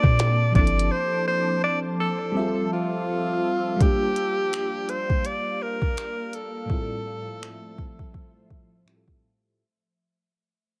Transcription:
Already playing: A#3 C4 D4 F4 G4 A4 D5 A5 D6
0.03 A#2, kick
0.19 snare, closed hi-hat
0.51 F3 C4 C5, kick, closed hi-hat
0.55 G1 D4 E4 D5
0.61 A4
0.67 closed hi-hat
0.79 closed hi-hat
0.91 C5
1.28 C5
1.64 D5
2.00 A4
2.32 G3 C4
2.37 F4 E5
2.42 G#4
2.48 A4
2.73 F4
3.76 G3 A3 G4 D5
3.80 A#3 D4 F4 G4 F5, kick, closed hi-hat
3.85 A#3 G4
4.16 closed hi-hat
4.53 finger snap, closed hi-hat
4.89 C5, closed hi-hat
5.10 kick
5.25 D5, closed hi-hat
5.63 A#4
5.82 kick
5.97 finger snap, closed hi-hat
6.33 A4, closed hi-hat
6.66 A2 G3 C4
6.70 F3 A3 E4 F4 C5 E5, kick
6.75 G#4
6.82 A4
7.43 finger snap
7.78 kick
7.99 kick
8.14 kick
8.50 kick
8.85 A2 G3 C4 E4 F4, finger snap
8.90 G4
8.96 A4
9.08 kick

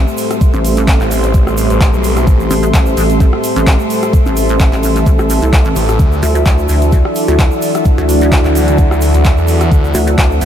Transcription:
Already playing: A3 G4 A4 C5 E5 C6
0.08 shaker
0.17 open hi-hat, shaker
0.31 cross-stick, closed hi-hat, shaker
0.41 kick, closed hi-hat, shaker
0.54 A1, shaker
0.65 open hi-hat, shaker
0.77 closed hi-hat, shaker
0.88 kick, clap, closed hi-hat, shaker
1.00 A1, clap, shaker
1.11 open hi-hat, shaker
1.23 closed hi-hat, shaker
1.34 kick, closed hi-hat, shaker
1.47 A1, cross-stick, shaker
1.57 open hi-hat, shaker
1.70 A1, closed hi-hat, shaker
1.81 kick, clap, closed hi-hat, shaker
1.94 B1, shaker
2.04 open hi-hat, shaker
2.17 cross-stick, closed hi-hat, shaker
2.27 A1, kick, closed hi-hat, shaker
2.40 shaker
2.51 A1, open hi-hat, shaker
2.63 closed hi-hat, shaker
2.74 A1, kick, clap, closed hi-hat, shaker
2.86 shaker
2.97 A1, open hi-hat, shaker
3.10 closed hi-hat, shaker
3.20 kick, closed hi-hat, shaker
3.33 cross-stick
3.44 open hi-hat, shaker
3.56 A1, closed hi-hat, shaker
3.67 kick, clap, closed hi-hat, shaker
3.80 shaker
3.90 open hi-hat, shaker
4.03 cross-stick, closed hi-hat, shaker
4.13 kick, closed hi-hat, shaker
4.26 A1, shaker
4.37 open hi-hat, shaker
4.49 closed hi-hat, shaker
4.60 kick, clap, closed hi-hat, shaker
4.73 A1, clap, shaker
4.83 open hi-hat, shaker
4.96 closed hi-hat, shaker
5.06 A1, kick, closed hi-hat, shaker
5.19 cross-stick, shaker
5.30 open hi-hat, shaker
5.42 C2, closed hi-hat, shaker
5.53 kick, clap, closed hi-hat, shaker
5.64 A1, shaker
5.76 A1, open hi-hat, shaker
5.89 cross-stick, closed hi-hat, shaker
5.99 D2 D4 E4 F#4 D5, kick, closed hi-hat, shaker
6.12 shaker
6.23 D2, open hi-hat, shaker
6.35 closed hi-hat, shaker
6.46 D2, kick, clap, closed hi-hat, shaker
6.54 F#5
6.58 shaker
6.68 D2, open hi-hat, shaker
6.82 closed hi-hat, shaker
6.92 kick, closed hi-hat, shaker
7.05 cross-stick
7.15 open hi-hat, shaker
7.28 D2, closed hi-hat, shaker
7.39 kick, clap, closed hi-hat, shaker
7.51 shaker
7.62 open hi-hat, shaker
7.75 cross-stick, closed hi-hat, shaker
7.85 kick, closed hi-hat, shaker
7.98 D2, shaker
8.09 open hi-hat, shaker
8.21 closed hi-hat, shaker
8.32 kick, clap, closed hi-hat, shaker
8.44 D2, clap, shaker
8.55 open hi-hat, shaker
8.68 closed hi-hat, shaker
8.78 kick, closed hi-hat, shaker
8.91 D2, cross-stick, shaker
9.01 open hi-hat, shaker
9.14 D2, closed hi-hat, shaker
9.24 kick, clap, closed hi-hat, shaker
9.37 E2, shaker
9.48 open hi-hat, shaker
9.61 cross-stick, closed hi-hat, shaker
9.71 D2 C5, kick, closed hi-hat, shaker
9.84 shaker
9.94 D2, open hi-hat, shaker
10.07 closed hi-hat, shaker
10.18 D2, kick, clap, closed hi-hat, shaker
10.31 shaker
10.41 D2, open hi-hat, shaker

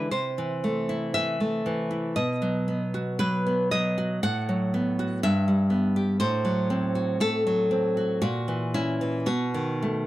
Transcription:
Already playing: G#3 E4 B4
0.11 C3 C5
0.38 E3
0.64 A3
0.89 E4
1.14 E3 E5
1.40 A3
1.66 E3
1.91 E4
2.16 B2 D#5
2.42 F#3
2.68 B3
2.94 F#4
3.19 F#3 B4
3.46 B3
3.71 F#3 D#5
3.98 F#4
4.23 A2 F#5
4.49 F#3
4.74 B3
4.99 F#4
5.23 G2 E5
5.48 G3
5.70 B3
5.96 G4
6.20 A2 C5
6.45 F#3
6.70 C4
6.95 F#4
7.20 A3 A4
7.47 F#3
7.71 C4
7.97 F#4
8.22 A#2 F#4
8.48 E3
8.74 C#4 E4
9.01 E3
9.26 B2 F#4
9.54 D#3
9.82 A3

